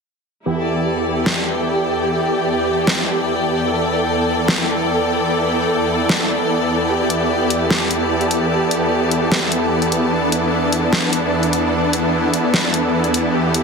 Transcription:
0.46 supersaw synth E2 E3 B3 G4, string section E4
0.52 string section A4
0.61 string section D5
1.23 string section G5, snare
2.87 snare
3.68 supersaw synth A4
4.48 snare
6.09 snare
6.90 supersaw synth G4
7.10 closed hi-hat
7.50 closed hi-hat
7.67 string section A5, snare
7.91 closed hi-hat
8.21 closed hi-hat
8.31 closed hi-hat
8.71 closed hi-hat
9.11 closed hi-hat
9.32 snare
9.52 closed hi-hat
9.82 closed hi-hat
9.92 closed hi-hat
10.12 supersaw synth D4
10.32 closed hi-hat
10.73 closed hi-hat
10.93 snare
11.13 closed hi-hat
11.43 closed hi-hat
11.53 closed hi-hat
11.93 closed hi-hat
12.34 closed hi-hat
12.54 snare
12.74 closed hi-hat
13.04 closed hi-hat
13.14 closed hi-hat
13.34 supersaw synth G4
13.54 closed hi-hat

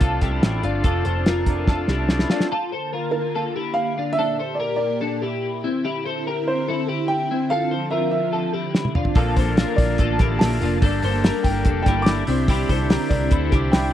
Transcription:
Already playing: clean electric guitar A3 C4 D4 A4, transistor combo organ D4 F4 A4
0.01 picked electric bass C2, clean electric guitar F4 A4, kick, closed hi-hat
0.21 picked electric bass C2, clean electric guitar E4 G4, kick, snare, closed hi-hat
0.31 clean electric guitar C4 D4 A4
0.42 picked electric bass A1, clean electric guitar A3 C4 D4 A4, snare, closed hi-hat
0.62 picked electric bass G1, clean electric guitar A3 C4 D4 F4 A4, closed hi-hat
0.83 picked electric bass F1, clean electric guitar F3 A3 C4 D4 F4 A4, kick, closed hi-hat
1.05 picked electric bass F1, clean electric guitar A4 C5, closed hi-hat
1.16 clean electric guitar C4 D4 A4
1.26 clean electric guitar F4 A#4, snare, closed hi-hat
1.46 clean electric guitar A3 C4 D4 A4, kick, closed hi-hat
1.68 clean electric guitar F4 A4, kick, snare
1.88 picked electric bass C2, clean electric guitar E4 G4, snare
1.98 clean electric guitar C4 D4 A4
2.08 clean electric guitar A3 C4 D4 A4, snare
2.19 snare
2.30 clean electric guitar A3 C4 D4 F4 A4, snare
2.40 snare
2.50 string machine D3 A#3 A5, clean electric guitar F4 A4
2.72 clean electric guitar A4 C5
2.93 clean electric guitar F4 A#4
3.11 upright piano A#4
3.35 clean electric guitar F4 A4
3.56 clean electric guitar E4 G4
3.74 upright piano F5
3.98 clean electric guitar D4 F4
4.13 upright piano E5
4.17 string machine A#2 A#3 G4, clean electric guitar D4 A4
4.39 clean electric guitar A4 C5
4.55 upright piano D5
4.60 clean electric guitar G4 A#4
4.76 upright piano D5
5.01 clean electric guitar D4 A4
5.22 clean electric guitar E4 G4
5.64 string machine D3 C4 E4, clean electric guitar C4 E4
5.85 clean electric guitar E4 G4
6.05 clean electric guitar A4 C5
6.27 clean electric guitar G4 A#4
6.48 upright piano C5
6.69 clean electric guitar E4 A4
6.88 clean electric guitar E4 G4
7.08 upright piano G5
7.31 clean electric guitar C4 E4
7.50 string machine F3, clean electric guitar F4 A4, upright piano F5
7.71 clean electric guitar A4 C5
7.91 clean electric guitar F4 A#4, upright piano E5
8.11 upright piano E5
8.33 clean electric guitar F4 A4
8.54 clean electric guitar E4 G4
8.75 snare
8.85 high tom
8.95 clean electric guitar D4 F4, mid tom
9.05 floor tom
9.15 picked electric bass A#1, clean electric guitar A#2 D3 F3 A#3 D4 F4 A4, transistor combo organ A#3 D4 F4 A4, string machine A#3 A5, kick, open hi-hat
9.36 picked electric bass A#1, clean electric guitar A4 C5, kick, hi-hat pedal, open hi-hat
9.47 clean electric guitar F3 A#3 D4 A4
9.57 clean electric guitar F4 A#4, snare, hi-hat pedal, open hi-hat
9.76 picked electric bass A#1, upright piano D5, kick, hi-hat pedal, open hi-hat
9.98 picked electric bass A1, clean electric guitar F4 A4, kick, hi-hat pedal, open hi-hat
10.19 picked electric bass A1, clean electric guitar F3 A#3 D4 E4 G4 A4, kick, snare, hi-hat pedal, open hi-hat
10.39 picked electric bass A#1, clean electric guitar F3 A#3 D4, upright piano A5, snare, hi-hat pedal, open hi-hat
10.44 clean electric guitar A4
10.60 picked electric bass F1, clean electric guitar F3 A#3 D4 F4 A4, hi-hat pedal, open hi-hat
10.81 picked electric bass G1, clean electric guitar G2 D3 G3 A#3 D4 A4, string machine G3, transistor combo organ A#3 D4 G4 A4, kick, hi-hat pedal, open hi-hat
11.02 picked electric bass G1, clean electric guitar A4 C5, hi-hat pedal, open hi-hat
11.12 clean electric guitar G3 A#3 D4 A4
11.24 clean electric guitar G4 A#4, snare, hi-hat pedal, open hi-hat
11.43 picked electric bass G1, upright piano G5, kick, hi-hat pedal, open hi-hat
11.65 picked electric bass F1, clean electric guitar D4 A4, kick, hi-hat pedal, open hi-hat
11.83 picked electric bass G1, clean electric guitar G3 A#3, upright piano G5, kick, snare, hi-hat pedal, open hi-hat
11.87 clean electric guitar D4 E4 G4 A4
12.02 clean electric guitar G3, upright piano D6, hi-hat pedal
12.06 clean electric guitar A#3 D4 A4, snare, open hi-hat
12.25 picked electric bass C2, string machine D3 C4 E4, clean electric guitar G3 C4 D4 E4 G4, transistor combo organ D4 E4 G4 C5, hi-hat pedal, open hi-hat
12.48 clean electric guitar C3 G3 D4 E4 G4, kick, hi-hat pedal, open hi-hat
12.69 picked electric bass C2, clean electric guitar A4 C5, kick, hi-hat pedal, open hi-hat
12.78 clean electric guitar D4 E4 G4
12.90 clean electric guitar G4 A#4, snare, hi-hat pedal, open hi-hat
13.09 picked electric bass C2, upright piano D5, kick, hi-hat pedal, open hi-hat
13.31 picked electric bass D2, clean electric guitar E4 A4, kick, hi-hat pedal, open hi-hat
13.52 picked electric bass C2, clean electric guitar G3 D4 E4 G4, kick, snare, hi-hat pedal, open hi-hat
13.71 picked electric bass C2, clean electric guitar G3 D4 E4, upright piano G5, snare, hi-hat pedal, open hi-hat
13.76 clean electric guitar G4

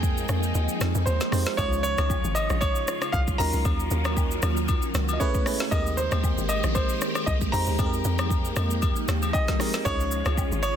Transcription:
Already playing: log drum bass F2, string machine F3 G#3 A#3 D#4 G5, fm electric piano G#3 C4 D#4 A#4 G5, grand piano G#4
0.03 kick, shaker
0.18 shaker
0.29 log drum bass F2, cross-stick, shaker
0.43 shaker
0.55 log drum bass D#2, shaker
0.69 shaker
0.81 log drum bass F2, cross-stick, snare, shaker
0.95 log drum bass F2, shaker
1.06 log drum bass D#2, grand piano C5, shaker
1.21 snare, shaker
1.32 log drum bass F2, fm electric piano G#3 C4 D#4 G4 C5, cross-stick, open hi-hat, shaker
1.46 snare, shaker
1.57 log drum bass C#2, string machine C#3 C#4 F4, fm electric piano G#3 C#4 D#4 F4 C#5, grand piano C#5, kick, high agogo, shaker
1.73 shaker
1.83 grand piano C#5, shaker
1.98 log drum bass C#2, cross-stick, high agogo, shaker
2.10 kick, low woodblock, shaker
2.24 log drum bass G#1, shaker
2.35 grand piano D#5, high agogo, shaker
2.50 log drum bass A#1, cross-stick, shaker
2.61 grand piano C#5, kick, high agogo, shaker
2.75 shaker
2.88 cross-stick, shaker
3.02 cross-stick, high agogo, shaker
3.12 log drum bass C2, grand piano F5, kick, shaker
3.28 kick, shaker
3.38 log drum bass D#2, string machine D#3 F#3 A#3 C#4, fm electric piano F#3 C#4 D#4 F4 A#4, grand piano A#5, open hi-hat, shaker
3.53 log drum bass C#2, shaker
3.65 log drum bass D#2, kick, high agogo, shaker
3.80 shaker
3.91 log drum bass D#2, shaker
4.05 cross-stick, high agogo, shaker
4.17 kick, low woodblock, shaker
4.31 shaker
4.42 log drum bass D#2, cross-stick, high agogo, shaker
4.57 shaker
4.68 kick, high agogo, shaker
4.82 shaker
4.95 log drum bass C#2, cross-stick, snare, shaker
5.09 high agogo, shaker
5.13 grand piano D#5
5.20 string machine C#3 G#3 A3 B3 E4, fm electric piano A3 C#4 E4 G#4 B4, grand piano C#5, kick, shaker
5.34 kick, shaker
5.46 fm electric piano A3 C#4 E4 G#4 B4, cross-stick, open hi-hat, shaker
5.60 snare, shaker
5.71 log drum bass D#2, string machine D#3 A#3 C4 G4, fm electric piano G#3 C4 D#4 G4 A#4, grand piano D#5, kick, high agogo, shaker
5.87 shaker
5.97 grand piano C5, shaker
6.12 log drum bass D#2, cross-stick, high agogo, shaker
6.24 kick, low woodblock, shaker
6.38 log drum bass G#1, shaker
6.49 grand piano D#5, high agogo, shaker
6.64 log drum bass A#1, cross-stick, shaker
6.75 grand piano C5, kick, high agogo, shaker
6.89 shaker
7.01 cross-stick, shaker
7.15 cross-stick, high agogo, shaker
7.26 log drum bass C2, grand piano D#5, kick, shaker
7.41 kick, shaker
7.52 log drum bass F2, fm electric piano G#3 C4 D#4 G4 C5, grand piano A#5, open hi-hat, shaker
7.67 log drum bass D#2, shaker
7.78 log drum bass F2, string machine F3 G#3 A#3 D#4, fm electric piano G#3 C4 D#4 G4 G#4, kick, high agogo, shaker
7.86 fm electric piano A#4
7.93 shaker
8.05 log drum bass F2, shaker
8.19 cross-stick, high agogo, shaker
8.31 kick, shaker
8.45 shaker
8.56 log drum bass F2, cross-stick, high agogo, shaker
8.71 shaker
8.82 kick, high agogo, shaker
8.96 shaker
9.08 log drum bass D#2, cross-stick, snare, shaker
9.22 high agogo, shaker
9.33 grand piano D#5, kick, low woodblock, shaker
9.48 kick, snare, shaker
9.59 fm electric piano G#3 C4 D#4 G4 A#4, cross-stick, open hi-hat, shaker
9.73 snare, shaker
9.85 log drum bass C#2, string machine C#3 C#4 F4, fm electric piano G#3 C#4 D#4 F4 C#5, grand piano C#5, kick, high agogo, shaker
10.00 shaker
10.12 shaker
10.26 log drum bass C#2, cross-stick, high agogo, shaker
10.37 kick, low woodblock, shaker
10.52 log drum bass G#1, shaker
10.63 grand piano C#5, high agogo, shaker

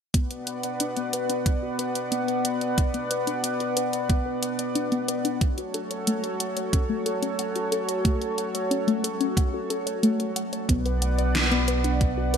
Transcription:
0.14 analog synth pad B3 B4 D5 F#5, synth arpeggio sound B3, kick, closed hi-hat
0.31 synth arpeggio sound B4, closed hi-hat
0.47 synth arpeggio sound F#5, closed hi-hat
0.63 synth arpeggio sound D5, closed hi-hat
0.80 synth arpeggio sound D4, closed hi-hat
0.97 synth arpeggio sound B3, closed hi-hat
1.13 synth arpeggio sound B4, closed hi-hat
1.29 synth arpeggio sound D4, closed hi-hat
1.46 synth arpeggio sound F#5, kick, closed hi-hat
1.62 synth arpeggio sound F#4
1.79 synth arpeggio sound B4, closed hi-hat
1.95 synth arpeggio sound D5, closed hi-hat
2.12 synth arpeggio sound B3, closed hi-hat
2.28 synth arpeggio sound B4, closed hi-hat
2.45 synth arpeggio sound F#5, closed hi-hat
2.61 synth arpeggio sound D5, closed hi-hat
2.78 synth arpeggio sound D4, kick, closed hi-hat
2.94 synth arpeggio sound B3, closed hi-hat
3.11 synth arpeggio sound B4, closed hi-hat
3.27 synth arpeggio sound D4, closed hi-hat
3.44 synth arpeggio sound F#5, closed hi-hat
3.60 synth arpeggio sound F#4, closed hi-hat
3.77 synth arpeggio sound B4, closed hi-hat
3.93 synth arpeggio sound D5, closed hi-hat
4.09 synth arpeggio sound B3, kick, closed hi-hat
4.26 synth arpeggio sound B4
4.42 synth arpeggio sound F#5, closed hi-hat
4.59 synth arpeggio sound D5, closed hi-hat
4.75 synth arpeggio sound D4, closed hi-hat
4.92 synth arpeggio sound B3, closed hi-hat
5.08 synth arpeggio sound B4, closed hi-hat
5.25 synth arpeggio sound D4, closed hi-hat
5.41 analog synth pad F#4 A4 C#5, synth arpeggio sound F#5, kick, closed hi-hat
5.58 synth arpeggio sound F#4, closed hi-hat
5.74 synth arpeggio sound A4, closed hi-hat
5.91 synth arpeggio sound C#5, closed hi-hat
6.07 synth arpeggio sound A3, closed hi-hat
6.24 synth arpeggio sound A4, closed hi-hat
6.40 synth arpeggio sound F#5, closed hi-hat
6.57 synth arpeggio sound C#5, closed hi-hat
6.73 synth arpeggio sound C#4, kick, closed hi-hat
6.89 synth arpeggio sound A3
7.06 synth arpeggio sound A4, closed hi-hat
7.22 synth arpeggio sound C#4, closed hi-hat
7.39 synth arpeggio sound F#5, closed hi-hat
7.56 synth arpeggio sound F#4, closed hi-hat
7.72 synth arpeggio sound A4, closed hi-hat
7.88 synth arpeggio sound C#5, closed hi-hat
8.05 synth arpeggio sound A3, kick, closed hi-hat
8.21 synth arpeggio sound A4, closed hi-hat
8.38 synth arpeggio sound F#5, closed hi-hat
8.54 synth arpeggio sound C#5, closed hi-hat
8.71 synth arpeggio sound C#4, closed hi-hat
8.87 synth arpeggio sound A3, closed hi-hat
9.04 synth arpeggio sound A4, closed hi-hat
9.20 synth arpeggio sound C#4, closed hi-hat
9.37 synth arpeggio sound F#5, kick, closed hi-hat
9.54 synth arpeggio sound F#4
9.70 synth arpeggio sound A4, closed hi-hat
9.86 synth arpeggio sound C#5, closed hi-hat
10.03 synth arpeggio sound A3, closed hi-hat
10.20 synth arpeggio sound A4, closed hi-hat
10.36 synth arpeggio sound F#5, closed hi-hat
10.53 synth arpeggio sound C#5, closed hi-hat
10.69 analog synth bass B1, synth arpeggio sound B3, analog synth pad B3 B4 D5 F#5, kick, closed hi-hat
10.85 synth arpeggio sound B4, closed hi-hat
11.02 synth arpeggio sound F#5, closed hi-hat
11.18 synth arpeggio sound D5, closed hi-hat
11.35 synth arpeggio sound D4, snare, closed hi-hat
11.51 synth arpeggio sound B3, closed hi-hat
11.68 synth arpeggio sound B4, closed hi-hat
11.84 synth arpeggio sound D4, closed hi-hat
12.01 synth arpeggio sound F#5, kick, closed hi-hat
12.17 synth arpeggio sound F#4
12.34 synth arpeggio sound B4, closed hi-hat

